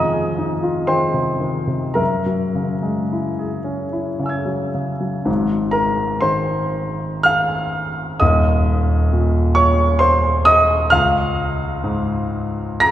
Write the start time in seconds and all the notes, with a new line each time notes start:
Already playing: F2 C3 D#3 C4 F4 G#4 D#5 G#5 A#5 D#6
0.13 G#4
0.38 D#4
0.63 F4
0.87 D#3 C5 G5 C6
1.14 C3
1.40 D#3
1.67 C3
1.94 F#2 A#4 E5 A#5
2.26 F#3
2.55 C#3
2.82 G#3
3.12 E4
3.39 G#4
3.64 C#4
3.93 E4
4.19 C#3 C#5 G#5
4.26 E6 G#6
4.46 F#3
4.75 C#3
5.00 F#3
5.25 G#1 G#2
5.71 A#4 A#5
6.21 D#3 C5 C6
7.23 F5 F6
8.20 D#1 D#2 D#5 D#6
9.13 A#2
9.55 C#5 C#6
9.99 C5 C6
10.45 D#5 D#6
10.90 C#2 F5 F6
11.84 G#2
12.80 A#5 A#6